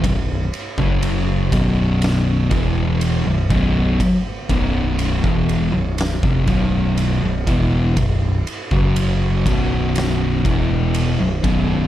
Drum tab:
RD |x-x-x-x-x-x-x-x-|x-x-x-x-x-x-x-x-|x-x-x-x-x-x-x-x-|
SD |--------o-------|--------o-------|--------o-------|
BD |o--o--o---o---o-|o-o--o---oo---o-|o--o--o---o---o-|